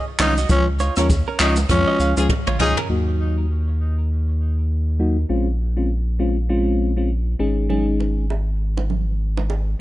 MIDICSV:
0, 0, Header, 1, 7, 480
1, 0, Start_track
1, 0, Tempo, 600000
1, 397, Time_signature, 4, 2, 24, 8
1, 7847, End_track
2, 0, Start_track
2, 0, Title_t, "Clean electric guitar"
2, 0, Program_c, 0, 27
2, 162, Note_on_c, 0, 73, 85
2, 168, Note_on_c, 0, 65, 66
2, 271, Note_off_c, 0, 73, 0
2, 274, Note_off_c, 0, 65, 0
2, 302, Note_on_c, 0, 75, 84
2, 308, Note_on_c, 0, 66, 65
2, 380, Note_off_c, 0, 75, 0
2, 383, Note_off_c, 0, 66, 0
2, 641, Note_on_c, 0, 73, 82
2, 648, Note_on_c, 0, 65, 68
2, 750, Note_off_c, 0, 73, 0
2, 754, Note_off_c, 0, 65, 0
2, 781, Note_on_c, 0, 70, 78
2, 788, Note_on_c, 0, 61, 59
2, 859, Note_off_c, 0, 70, 0
2, 863, Note_off_c, 0, 61, 0
2, 1022, Note_on_c, 0, 70, 82
2, 1028, Note_on_c, 0, 61, 66
2, 1100, Note_off_c, 0, 70, 0
2, 1103, Note_off_c, 0, 61, 0
2, 1122, Note_on_c, 0, 73, 92
2, 1129, Note_on_c, 0, 65, 69
2, 1231, Note_off_c, 0, 73, 0
2, 1235, Note_off_c, 0, 65, 0
2, 1500, Note_on_c, 0, 75, 80
2, 1508, Note_on_c, 0, 66, 61
2, 1579, Note_off_c, 0, 75, 0
2, 1583, Note_off_c, 0, 66, 0
2, 1602, Note_on_c, 0, 77, 87
2, 1608, Note_on_c, 0, 68, 64
2, 1711, Note_off_c, 0, 77, 0
2, 1714, Note_off_c, 0, 68, 0
2, 1981, Note_on_c, 0, 73, 75
2, 1988, Note_on_c, 0, 65, 60
2, 2059, Note_off_c, 0, 73, 0
2, 2063, Note_off_c, 0, 65, 0
2, 2220, Note_on_c, 0, 70, 77
2, 2227, Note_on_c, 0, 61, 60
2, 2299, Note_off_c, 0, 70, 0
2, 2303, Note_off_c, 0, 61, 0
2, 7847, End_track
3, 0, Start_track
3, 0, Title_t, "Horn section"
3, 0, Program_c, 1, 61
3, 1734, Note_on_c, 1, 61, 81
3, 1734, Note_on_c, 1, 65, 85
3, 1735, Note_on_c, 1, 68, 92
3, 1820, Note_off_c, 1, 65, 0
3, 1821, Note_off_c, 1, 61, 0
3, 1821, Note_off_c, 1, 68, 0
3, 2074, Note_on_c, 1, 61, 96
3, 2074, Note_on_c, 1, 65, 101
3, 2074, Note_on_c, 1, 68, 111
3, 2228, Note_off_c, 1, 61, 0
3, 2228, Note_off_c, 1, 65, 0
3, 2228, Note_off_c, 1, 68, 0
3, 7847, End_track
4, 0, Start_track
4, 0, Title_t, "Tenor saxophone"
4, 0, Program_c, 2, 66
4, 168, Note_on_c, 2, 63, 80
4, 282, Note_off_c, 2, 63, 0
4, 408, Note_on_c, 2, 61, 104
4, 521, Note_off_c, 2, 61, 0
4, 785, Note_on_c, 2, 61, 69
4, 867, Note_off_c, 2, 61, 0
4, 1127, Note_on_c, 2, 63, 74
4, 1241, Note_off_c, 2, 63, 0
4, 1366, Note_on_c, 2, 61, 99
4, 1718, Note_off_c, 2, 61, 0
4, 2086, Note_on_c, 2, 63, 87
4, 2200, Note_off_c, 2, 63, 0
4, 7847, End_track
5, 0, Start_track
5, 0, Title_t, "FM electric piano"
5, 0, Program_c, 3, 5
5, 154, Note_on_c, 3, 51, 79
5, 156, Note_on_c, 3, 56, 72
5, 157, Note_on_c, 3, 61, 67
5, 158, Note_on_c, 3, 63, 83
5, 296, Note_off_c, 3, 51, 0
5, 297, Note_off_c, 3, 56, 0
5, 297, Note_off_c, 3, 61, 0
5, 298, Note_off_c, 3, 63, 0
5, 393, Note_on_c, 3, 53, 97
5, 395, Note_on_c, 3, 56, 84
5, 397, Note_on_c, 3, 61, 86
5, 398, Note_on_c, 3, 65, 102
5, 535, Note_off_c, 3, 53, 0
5, 536, Note_off_c, 3, 56, 0
5, 537, Note_off_c, 3, 61, 0
5, 538, Note_off_c, 3, 65, 0
5, 774, Note_on_c, 3, 53, 76
5, 775, Note_on_c, 3, 56, 67
5, 777, Note_on_c, 3, 61, 71
5, 779, Note_on_c, 3, 65, 83
5, 877, Note_off_c, 3, 53, 0
5, 878, Note_off_c, 3, 56, 0
5, 879, Note_off_c, 3, 61, 0
5, 880, Note_off_c, 3, 65, 0
5, 1114, Note_on_c, 3, 53, 81
5, 1116, Note_on_c, 3, 56, 71
5, 1117, Note_on_c, 3, 61, 72
5, 1119, Note_on_c, 3, 65, 84
5, 1256, Note_off_c, 3, 53, 0
5, 1257, Note_off_c, 3, 56, 0
5, 1257, Note_off_c, 3, 61, 0
5, 1258, Note_off_c, 3, 65, 0
5, 1355, Note_on_c, 3, 53, 96
5, 1356, Note_on_c, 3, 56, 88
5, 1358, Note_on_c, 3, 61, 88
5, 1360, Note_on_c, 3, 65, 106
5, 1701, Note_off_c, 3, 53, 0
5, 1702, Note_off_c, 3, 56, 0
5, 1703, Note_off_c, 3, 61, 0
5, 1704, Note_off_c, 3, 65, 0
5, 1735, Note_on_c, 3, 53, 77
5, 1736, Note_on_c, 3, 56, 70
5, 1738, Note_on_c, 3, 61, 70
5, 1739, Note_on_c, 3, 65, 87
5, 1838, Note_off_c, 3, 53, 0
5, 1838, Note_off_c, 3, 56, 0
5, 1839, Note_off_c, 3, 61, 0
5, 1840, Note_off_c, 3, 65, 0
5, 2314, Note_on_c, 3, 54, 86
5, 2316, Note_on_c, 3, 58, 81
5, 2318, Note_on_c, 3, 63, 77
5, 2319, Note_on_c, 3, 66, 93
5, 2763, Note_off_c, 3, 54, 0
5, 2764, Note_off_c, 3, 58, 0
5, 2765, Note_off_c, 3, 63, 0
5, 2766, Note_off_c, 3, 66, 0
5, 3995, Note_on_c, 3, 54, 68
5, 3996, Note_on_c, 3, 58, 65
5, 3997, Note_on_c, 3, 63, 67
5, 3999, Note_on_c, 3, 66, 74
5, 4136, Note_off_c, 3, 54, 0
5, 4137, Note_off_c, 3, 58, 0
5, 4137, Note_off_c, 3, 63, 0
5, 4138, Note_off_c, 3, 66, 0
5, 4233, Note_on_c, 3, 56, 86
5, 4235, Note_on_c, 3, 60, 78
5, 4236, Note_on_c, 3, 61, 78
5, 4238, Note_on_c, 3, 65, 93
5, 4375, Note_off_c, 3, 56, 0
5, 4376, Note_off_c, 3, 60, 0
5, 4377, Note_off_c, 3, 61, 0
5, 4378, Note_off_c, 3, 65, 0
5, 4613, Note_on_c, 3, 56, 68
5, 4614, Note_on_c, 3, 60, 63
5, 4616, Note_on_c, 3, 61, 62
5, 4617, Note_on_c, 3, 65, 77
5, 4717, Note_off_c, 3, 56, 0
5, 4717, Note_off_c, 3, 60, 0
5, 4718, Note_off_c, 3, 61, 0
5, 4719, Note_off_c, 3, 65, 0
5, 4953, Note_on_c, 3, 56, 70
5, 4955, Note_on_c, 3, 60, 66
5, 4956, Note_on_c, 3, 61, 64
5, 4959, Note_on_c, 3, 65, 81
5, 5095, Note_off_c, 3, 56, 0
5, 5096, Note_off_c, 3, 60, 0
5, 5097, Note_off_c, 3, 61, 0
5, 5098, Note_off_c, 3, 65, 0
5, 5194, Note_on_c, 3, 56, 88
5, 5196, Note_on_c, 3, 60, 82
5, 5197, Note_on_c, 3, 61, 85
5, 5198, Note_on_c, 3, 65, 99
5, 5541, Note_off_c, 3, 56, 0
5, 5542, Note_off_c, 3, 60, 0
5, 5543, Note_off_c, 3, 61, 0
5, 5543, Note_off_c, 3, 65, 0
5, 5573, Note_on_c, 3, 56, 72
5, 5575, Note_on_c, 3, 60, 65
5, 5577, Note_on_c, 3, 61, 67
5, 5578, Note_on_c, 3, 65, 78
5, 5677, Note_off_c, 3, 56, 0
5, 5678, Note_off_c, 3, 60, 0
5, 5679, Note_off_c, 3, 61, 0
5, 5680, Note_off_c, 3, 65, 0
5, 5914, Note_on_c, 3, 56, 81
5, 5915, Note_on_c, 3, 61, 75
5, 5917, Note_on_c, 3, 63, 75
5, 5919, Note_on_c, 3, 68, 93
5, 6139, Note_off_c, 3, 56, 0
5, 6140, Note_off_c, 3, 61, 0
5, 6141, Note_off_c, 3, 63, 0
5, 6142, Note_off_c, 3, 68, 0
5, 6153, Note_on_c, 3, 56, 87
5, 6155, Note_on_c, 3, 61, 80
5, 6157, Note_on_c, 3, 63, 80
5, 6158, Note_on_c, 3, 68, 94
5, 6603, Note_off_c, 3, 56, 0
5, 6603, Note_off_c, 3, 61, 0
5, 6604, Note_off_c, 3, 63, 0
5, 6605, Note_off_c, 3, 68, 0
5, 7847, End_track
6, 0, Start_track
6, 0, Title_t, "Sub bass"
6, 0, Program_c, 4, 38
6, 156, Note_on_c, 4, 36, 98
6, 364, Note_off_c, 4, 36, 0
6, 396, Note_on_c, 4, 37, 105
6, 724, Note_off_c, 4, 37, 0
6, 775, Note_on_c, 4, 39, 90
6, 983, Note_off_c, 4, 39, 0
6, 1116, Note_on_c, 4, 37, 100
6, 1323, Note_off_c, 4, 37, 0
6, 1356, Note_on_c, 4, 41, 101
6, 1476, Note_off_c, 4, 41, 0
6, 1595, Note_on_c, 4, 37, 97
6, 1716, Note_off_c, 4, 37, 0
6, 1735, Note_on_c, 4, 37, 91
6, 1822, Note_off_c, 4, 37, 0
6, 1976, Note_on_c, 4, 34, 92
6, 2063, Note_off_c, 4, 34, 0
6, 2076, Note_on_c, 4, 37, 94
6, 2196, Note_off_c, 4, 37, 0
6, 2315, Note_on_c, 4, 39, 79
6, 4204, Note_off_c, 4, 39, 0
6, 4237, Note_on_c, 4, 34, 81
6, 5885, Note_off_c, 4, 34, 0
6, 5917, Note_on_c, 4, 32, 82
6, 7805, Note_off_c, 4, 32, 0
6, 7847, End_track
7, 0, Start_track
7, 0, Title_t, "Drums"
7, 157, Note_on_c, 9, 37, 99
7, 157, Note_on_c, 9, 39, 98
7, 159, Note_on_c, 9, 61, 76
7, 159, Note_on_c, 9, 64, 78
7, 160, Note_on_c, 9, 46, 92
7, 160, Note_on_c, 9, 82, 62
7, 237, Note_off_c, 9, 37, 0
7, 237, Note_off_c, 9, 39, 0
7, 239, Note_off_c, 9, 61, 0
7, 239, Note_off_c, 9, 64, 0
7, 240, Note_off_c, 9, 46, 0
7, 240, Note_off_c, 9, 82, 0
7, 300, Note_on_c, 9, 82, 76
7, 380, Note_off_c, 9, 82, 0
7, 395, Note_on_c, 9, 82, 80
7, 396, Note_on_c, 9, 36, 120
7, 396, Note_on_c, 9, 44, 68
7, 400, Note_on_c, 9, 64, 69
7, 475, Note_off_c, 9, 82, 0
7, 476, Note_off_c, 9, 36, 0
7, 476, Note_off_c, 9, 44, 0
7, 480, Note_off_c, 9, 64, 0
7, 635, Note_on_c, 9, 82, 60
7, 640, Note_on_c, 9, 61, 55
7, 715, Note_off_c, 9, 82, 0
7, 720, Note_off_c, 9, 61, 0
7, 770, Note_on_c, 9, 82, 74
7, 774, Note_on_c, 9, 37, 97
7, 850, Note_off_c, 9, 82, 0
7, 854, Note_off_c, 9, 37, 0
7, 878, Note_on_c, 9, 36, 95
7, 880, Note_on_c, 9, 82, 69
7, 881, Note_on_c, 9, 60, 76
7, 958, Note_off_c, 9, 36, 0
7, 960, Note_off_c, 9, 82, 0
7, 961, Note_off_c, 9, 60, 0
7, 1117, Note_on_c, 9, 46, 80
7, 1117, Note_on_c, 9, 82, 59
7, 1118, Note_on_c, 9, 37, 91
7, 1118, Note_on_c, 9, 39, 92
7, 1197, Note_off_c, 9, 46, 0
7, 1197, Note_off_c, 9, 82, 0
7, 1198, Note_off_c, 9, 37, 0
7, 1198, Note_off_c, 9, 39, 0
7, 1249, Note_on_c, 9, 82, 65
7, 1259, Note_on_c, 9, 61, 78
7, 1329, Note_off_c, 9, 82, 0
7, 1339, Note_off_c, 9, 61, 0
7, 1353, Note_on_c, 9, 37, 94
7, 1355, Note_on_c, 9, 44, 67
7, 1356, Note_on_c, 9, 36, 110
7, 1356, Note_on_c, 9, 82, 83
7, 1359, Note_on_c, 9, 64, 88
7, 1433, Note_off_c, 9, 37, 0
7, 1435, Note_off_c, 9, 44, 0
7, 1436, Note_off_c, 9, 36, 0
7, 1436, Note_off_c, 9, 82, 0
7, 1439, Note_off_c, 9, 64, 0
7, 1599, Note_on_c, 9, 82, 54
7, 1679, Note_off_c, 9, 82, 0
7, 1737, Note_on_c, 9, 82, 85
7, 1738, Note_on_c, 9, 61, 79
7, 1817, Note_off_c, 9, 82, 0
7, 1818, Note_off_c, 9, 61, 0
7, 1835, Note_on_c, 9, 36, 96
7, 1836, Note_on_c, 9, 48, 61
7, 1838, Note_on_c, 9, 60, 79
7, 1915, Note_off_c, 9, 36, 0
7, 1916, Note_off_c, 9, 48, 0
7, 1918, Note_off_c, 9, 60, 0
7, 1974, Note_on_c, 9, 47, 67
7, 2054, Note_off_c, 9, 47, 0
7, 2076, Note_on_c, 9, 45, 101
7, 2078, Note_on_c, 9, 61, 78
7, 2078, Note_on_c, 9, 64, 76
7, 2156, Note_off_c, 9, 45, 0
7, 2158, Note_off_c, 9, 61, 0
7, 2158, Note_off_c, 9, 64, 0
7, 2215, Note_on_c, 9, 43, 99
7, 2295, Note_off_c, 9, 43, 0
7, 6161, Note_on_c, 9, 64, 65
7, 6241, Note_off_c, 9, 64, 0
7, 6402, Note_on_c, 9, 61, 52
7, 6482, Note_off_c, 9, 61, 0
7, 6643, Note_on_c, 9, 60, 68
7, 6723, Note_off_c, 9, 60, 0
7, 7019, Note_on_c, 9, 61, 72
7, 7099, Note_off_c, 9, 61, 0
7, 7120, Note_on_c, 9, 64, 78
7, 7200, Note_off_c, 9, 64, 0
7, 7499, Note_on_c, 9, 61, 78
7, 7579, Note_off_c, 9, 61, 0
7, 7598, Note_on_c, 9, 60, 75
7, 7678, Note_off_c, 9, 60, 0
7, 7847, End_track
0, 0, End_of_file